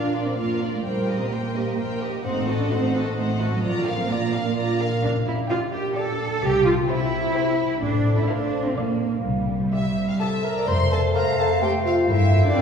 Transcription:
Already playing: A#1 A#2 F3 D4 F4 A#4 F5
0.07 A#4
0.15 F4 A#4 D5
0.22 D5
0.27 C4
0.38 A#1 A#3 F4 A#4 F5
0.54 D4
0.62 F4 A#4 D5
0.69 F3
0.74 A3
0.85 A#1 A#2 G3 A#4 C5 G5
1.01 A#3
1.08 G4 A#4 D#5
1.16 C4 D#4
1.31 A#1 A#3 G4 A#4 C5 G5
1.47 C5
1.54 G4 A#4 D#5
1.63 D#5
1.77 A#1 A#4 C5 G5
1.93 D#4
2.01 G4 A#4 D#5
2.09 A#3
2.24 A1 A2 C4 D#4 C5 F#5
2.40 A3
2.48 F#4 A4 D#5
2.56 D4 D#4
2.70 A1 C4 D#4 F#4 C5 F#5
2.87 C5
2.94 F#4 A4 D#5
3.02 A#3 D#5
3.17 A1 A3 D#4 C5 F#5
3.33 D#4
3.40 F#4 A4 D#5
3.48 F#3 A3
3.63 A#1 A#2 F3 F4 D5 A#5
3.79 F3
3.87 A#4 F5
3.95 C4 D4
4.09 A#1 A#3 F4 D5 A#5
4.25 D5
4.33 A#4 F5
4.41 F4
4.56 A#1 F4 D5 A#5
4.72 D4
4.81 A#4 F5
4.88 F3
5.03 A#1 A#2 D4
5.19 A#3
5.27 E4
5.34 D4
5.50 F4 G4 D5 G5
5.65 D5
5.72 G4
5.80 G4
5.96 G4 A4 D5 G5
6.11 D4
6.27 A#3
6.42 C2 C3 G4
6.58 G3
6.65 F4
6.74 C4
6.89 E4 G4 C5 G5
7.05 C5
7.20 G4
7.35 G4 C5 G5
7.51 C4
7.67 G3
7.82 A1 A2 D4
7.98 A3
8.13 C4
8.18 E4
8.29 D4 F4 A4 C5 F5
8.45 C5
8.60 F4
8.65 C4
8.76 A#1 A#2 A#3 D5 F5
8.92 D4
9.08 F4 F5
9.25 C2 C3 G3
9.41 G3
9.57 C4
9.73 E4 G4 E5
9.89 C5
10.04 E4
10.09 F5
10.20 G4 A4 C5 E5 A5
10.37 C4
10.44 A#4 A#5
10.53 G3
10.58 D5
10.67 F1 F2 A3 C5 F5 C6
10.80 C3
10.92 C4 A4 A5
11.04 A4
11.14 A3 A#4 C5 F5 A#5
11.27 A4
11.38 A4 A5
11.51 C6
11.62 A3 G4 C5 F5 G5 A5
11.74 C5
11.85 F4 A4 F5
11.97 C4
12.08 G1 G2 A#3 E4 E5 G5
12.21 G3
12.33 C4
12.43 D4 G4 D5
12.56 C4 A#4 E5

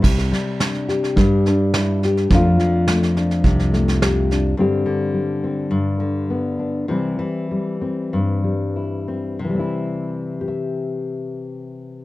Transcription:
Already playing: G3 C4 E4
0.02 C2 C3, kick, snare, crash
0.19 snare
0.31 G3, snare
0.60 D4, snare
0.74 snare
0.88 G4, snare
1.04 snare
1.16 G2, kick, snare
1.46 D4, snare
1.74 E4, snare
2.03 G4, snare
2.17 snare
2.30 F2 F3 A3 D4, kick, snare
2.35 F4
2.59 F3, snare
2.88 A3, snare
3.03 snare
3.17 D4, snare
3.31 snare
3.44 C2 C3, kick, snare
3.59 snare
3.73 A3, snare
3.88 snare
4.02 G4, snare
4.31 D4, snare
4.57 G2 D3 G3 C4 G4
4.86 D3
5.14 G3
5.44 C4
5.71 G2
6.00 D3
6.30 B3
6.59 D4
6.88 C3 E3 G3 C4 E4
7.19 E3
7.51 G3
7.81 C4
8.13 G2
8.44 G3
8.76 E4
9.08 C4
9.39 C3
9.44 E3
9.49 G3
9.55 C4
9.59 E4
10.41 G4
10.48 E5

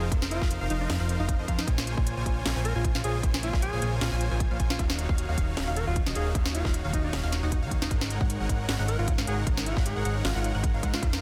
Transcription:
Already playing: C3 A#3 D#4 F4
0.12 F1 F3 D#4 A#4 C5 F5, kick, closed hi-hat
0.22 snare
0.31 F4, closed hi-hat
0.41 F1 F3 D#4 A#4 C5 F5, kick, snare
0.51 closed hi-hat
0.61 F1 F3 D#4 A#4 C5 F5
0.70 F1 F3 D#4 A#4 C5 F5, closed hi-hat
0.81 D#4
0.90 F1 F3 D#4 A#4 C5 F5, snare, closed hi-hat
1.00 F1 F3 D#4 A#4 C5 F5
1.09 closed hi-hat
1.19 F1 F3 D#4 A#4 C5 F5
1.29 D#4, kick, closed hi-hat
1.39 F2 F3 D#4 A#4 C5 D#5
1.48 F2 F3 D#4 A#4 C5 F5, kick, closed hi-hat
1.58 D#4, snare
1.67 A#1 C#3 G#3 A#3 F4 C5 C#5 G#5, kick, closed hi-hat
1.78 snare
1.87 closed hi-hat
1.97 A#1 A#3 F4 C5 C#5 G#5, kick
2.07 closed hi-hat
2.17 A#1 A#3 F4 C5 C#5 G#5
2.26 A#1 A#3 F4 C5 C#5 G#5, kick, closed hi-hat
2.45 A#1 A#3 F4 C5 C#5 G#5, snare, closed hi-hat
2.56 A#1 A#3 F4 C5 C#5 G#5
2.65 A#4, closed hi-hat
2.75 A#1 A#3 F4 C5 C#5 G#5
2.84 kick, closed hi-hat
2.95 A#1 A#3 F4 C5 C#5 F5, snare
3.04 A#1 A#3 F4 G#4 C5 C#5 G#5, closed hi-hat
3.23 A#1 A#3 F4 C5 C#5 G#5, kick, closed hi-hat
3.34 snare
3.43 F4, closed hi-hat
3.53 A#1 A#3 G#5, kick, snare
3.62 G#4, closed hi-hat
3.73 A#1 A#3 F4 C5 C#5 G#5
3.82 A#1 A#3 F4 C5 C#5 G#5, closed hi-hat
4.01 A#1 A#3 F4 C5 C#5 G#5, snare, closed hi-hat
4.12 A#1 A#3 F4 C5 C#5 G#5
4.21 closed hi-hat
4.31 A#1 A#3 F4 C5 C#5 G#5
4.40 kick, closed hi-hat
4.51 A#1 A#3 F4 C5 C#5 F5
4.60 A#1 A#3 F4 C5 C#5 G#5, kick, closed hi-hat
4.70 F4, snare
4.79 D#1 D#3 F#3 D#4 F#4 C#5 F5, kick, closed hi-hat
4.90 snare
4.99 closed hi-hat
5.09 D#1 D#3 D#4 F5, kick
5.18 closed hi-hat
5.29 D#1 D#3 D#4 F#4 C#5 F5
5.38 D#1 D#3 D#4 F#4 C#5 F5, kick, closed hi-hat
5.57 D#1 D#3 D#4 F#4 C#5 F5, snare, closed hi-hat
5.68 D#1 D#3 D#4 F#4 C#5 F5
5.76 A#4, closed hi-hat
5.87 D#1 D#3 D#4 F4 F#4 C#5 F5
5.96 kick, closed hi-hat
6.06 D#1 D#3 D#4 F#4 C#5 D#5, snare
6.15 D#1 D#3 D#4 F#4 G#4 C#5 F5, closed hi-hat
6.35 D#1 D#3 D#4 F#4 C#5 F5, kick, closed hi-hat
6.46 snare
6.54 F4, closed hi-hat
6.65 D#1 D#3 D#4 F#4 C#5 F5, kick, snare
6.74 closed hi-hat
6.84 D#1 D#3 D#4 F#4 C#5 F5
6.93 D#1 D#3 D#4 F#4 C#5 F5, kick, closed hi-hat
7.04 D#4
7.13 D#1 D#3 D#4 F#4 C#5 F5, snare, closed hi-hat
7.23 D#1 D#3 D#4 F#4 C#5 F5
7.32 snare, closed hi-hat
7.43 D#1 D#3 D#4 F#4 C#5 F#5
7.52 D#4, kick, closed hi-hat
7.62 D#2 D#3 D#4 F#4 C#5 F5
7.71 kick, closed hi-hat
7.82 D#1 D#3 D#4 F#4 C#5 F5, snare
7.91 G#1 C#3 G#3 D#4 A#4 C#5 F#5, kick, closed hi-hat
8.01 snare
8.10 closed hi-hat
8.21 G#1 G#3 D#4 C#5 F#5, kick
8.30 closed hi-hat
8.40 G#1 G#3 D#4 A#4 C#5 F#5
8.49 G#1 G#3 D#4 A#4 C#5 F#5, kick, closed hi-hat
8.69 G#1 G#3 D#4 A#4 C#5 F#5, snare, closed hi-hat
8.79 G#1 G#3 D#4 A#4 C#5 F#5
8.88 A#4, closed hi-hat
8.99 G#1 G#3 D#4 F4 A#4 C#5 F#5
9.08 kick, closed hi-hat
9.18 G#1 G#3 D#4 A#4 C#5 F5, snare
9.27 G#1 G#3 D#4 G#4 A#4 C#5 F#5, closed hi-hat
9.47 G#1 G#3 D#4 A#4 C#5 F#5, kick, closed hi-hat
9.57 snare
9.66 F4, closed hi-hat
9.77 G#1 G#3 D#4 A#4 C#5 F#5, kick, snare
9.86 G#4, closed hi-hat
9.96 G#1 G#3 D#4 A#4 C#5 F#5
10.05 G#1 G#3 D#4 A#4 C#5 F#5, closed hi-hat
10.24 G#1 G#3 D#4 F4 A#4 C#5 F#5, snare, closed hi-hat
10.35 G#1 G#3 D#4 F4 A#4 C#5 F#5
10.44 closed hi-hat
10.54 G#1 G#3 D#4 A#4 C#5 F#5
10.64 kick, closed hi-hat
10.74 G#1 G#3 D#4 A#4 C#5 F5
10.83 G#2 G#3 D#4 A#4 C#5 F#5, kick, closed hi-hat
10.94 F4, snare
11.02 F1 C3 F3 A#3 D#4 A#4 C5 F5, kick, closed hi-hat
11.13 snare

